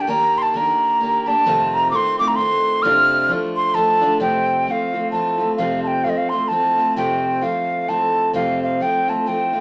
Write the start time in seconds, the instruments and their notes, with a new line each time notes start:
0.01 flute G5
0.07 steel-string acoustic guitar D#3 A#3 D4 G4, flute A#5
0.38 flute C6
0.42 flute A5
0.54 steel-string acoustic guitar D#3 A#3 D4 G4, flute A#5
1.00 steel-string acoustic guitar D#3 A#3 D4 G4
1.26 steel-string acoustic guitar A#3 D4 G4, flute A5
1.46 steel-string acoustic guitar F2 C3 D#3 A3 C4 F4
1.74 flute A#5
1.91 steel-string acoustic guitar D#3 A3 C4 F4, flute D6
1.96 flute C6
2.19 steel-string acoustic guitar D#3 A3 C4 F4, flute D6
2.28 flute A#5
2.36 steel-string acoustic guitar D#3 A3, flute C6
2.40 steel-string acoustic guitar C4 F4
2.82 steel-string acoustic guitar F2 C3 F3 A3 D4 F4, flute F6
3.29 steel-string acoustic guitar F3 A3 D4 F4
3.56 flute C6
3.74 steel-string acoustic guitar F3 A3 D4 F4, flute A5
4.01 steel-string acoustic guitar F3 A3 D4 F4
4.20 steel-string acoustic guitar F2 C3 F3 A3 C4 F4, flute G5
4.66 steel-string acoustic guitar F3 A3 C4, flute G5
4.70 steel-string acoustic guitar F4, flute F5
4.94 steel-string acoustic guitar F3 A3 C4 F4
5.11 steel-string acoustic guitar F3 A3 C4 F4, flute A5
5.38 steel-string acoustic guitar F3 A3 C4 F4
5.57 steel-string acoustic guitar F2 C3 F3 A3 C4 F4, flute F5
5.83 flute A5
5.87 flute G5
6.04 steel-string acoustic guitar F3 A3 C4 F4, flute F5
6.09 flute D#5
6.18 flute F5
6.29 steel-string acoustic guitar A3 C4 F4, flute C6
6.34 steel-string acoustic guitar F3
6.48 steel-string acoustic guitar F3 A3, flute A5
6.52 steel-string acoustic guitar C4 F4
6.78 steel-string acoustic guitar F3 A3 C4 F4
6.96 steel-string acoustic guitar F2 C3 F3 A3 C4 F4, flute G5
7.41 steel-string acoustic guitar F3 A3 C4 F4, flute F5
7.88 steel-string acoustic guitar F3 A3 C4 F4, flute A5
8.33 steel-string acoustic guitar F2 C3 F3 A3 C4 F4, flute F5
8.63 flute F5
8.80 steel-string acoustic guitar F3 A3 C4 F4, flute G5
9.08 steel-string acoustic guitar F3 A3 C4 F4, flute A5
9.26 steel-string acoustic guitar F3 A3 C4 F4, flute G5
9.53 steel-string acoustic guitar F3 A3 C4 F4